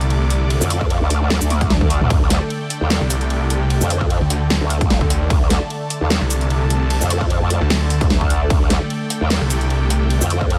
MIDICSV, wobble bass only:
0, 0, Header, 1, 2, 480
1, 0, Start_track
1, 0, Key_signature, -1, "minor"
1, 0, Tempo, 400000
1, 604, Time_signature, 4, 2, 24, 8
1, 12702, End_track
2, 0, Start_track
2, 0, Title_t, "Wobble bass"
2, 0, Program_c, 0, 39
2, 733, Note_on_c, 0, 41, 98
2, 1192, Note_off_c, 0, 41, 0
2, 1213, Note_on_c, 0, 38, 96
2, 1672, Note_off_c, 0, 38, 0
2, 1693, Note_on_c, 0, 38, 97
2, 2393, Note_off_c, 0, 38, 0
2, 2413, Note_on_c, 0, 38, 99
2, 2506, Note_off_c, 0, 38, 0
2, 2523, Note_on_c, 0, 38, 100
2, 2872, Note_off_c, 0, 38, 0
2, 3373, Note_on_c, 0, 39, 99
2, 3592, Note_off_c, 0, 39, 0
2, 4573, Note_on_c, 0, 41, 100
2, 5032, Note_off_c, 0, 41, 0
2, 5533, Note_on_c, 0, 38, 95
2, 5993, Note_off_c, 0, 38, 0
2, 6363, Note_on_c, 0, 38, 100
2, 6712, Note_off_c, 0, 38, 0
2, 7213, Note_on_c, 0, 39, 106
2, 7432, Note_off_c, 0, 39, 0
2, 8413, Note_on_c, 0, 41, 104
2, 8872, Note_off_c, 0, 41, 0
2, 8893, Note_on_c, 0, 41, 99
2, 9113, Note_off_c, 0, 41, 0
2, 9613, Note_on_c, 0, 38, 100
2, 9706, Note_off_c, 0, 38, 0
2, 9723, Note_on_c, 0, 38, 99
2, 10186, Note_off_c, 0, 38, 0
2, 10203, Note_on_c, 0, 38, 96
2, 10552, Note_off_c, 0, 38, 0
2, 11053, Note_on_c, 0, 39, 102
2, 11272, Note_off_c, 0, 39, 0
2, 12253, Note_on_c, 0, 41, 101
2, 12702, Note_off_c, 0, 41, 0
2, 12702, End_track
0, 0, End_of_file